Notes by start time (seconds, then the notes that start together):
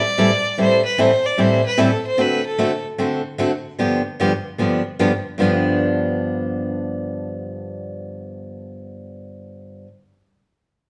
Already playing: D5
0.18 A2 E3 G3 C4 E4 A4
0.57 A2 E3 G3 C4 E4 A4 C5
0.85 B4
0.98 A2 E3 G3 C4 E4 A4 C5
1.26 D5
1.37 A2 E3 G3 C4 E4 A4 C5
1.66 B4
1.77 A2 E3 G3 C4 E4 A4
2.07 C5
2.17 D3 A3 C4 F#4 A4 B4
2.47 A4
2.58 D3 A3 C4 F#4 A4
2.98 D3 A3 C4 F#4 A4
3.38 D3 A3 C4 F#4 A4
3.79 G2 D3 F3 B3 D4 G4
4.20 G2 D3 F3 B3 D4 G4
4.58 G2 D3 F3 B3 D4 G4
4.99 G2 D3 F3 B3 D4 G4
5.38 G2 D3 F3 B3 D4 G4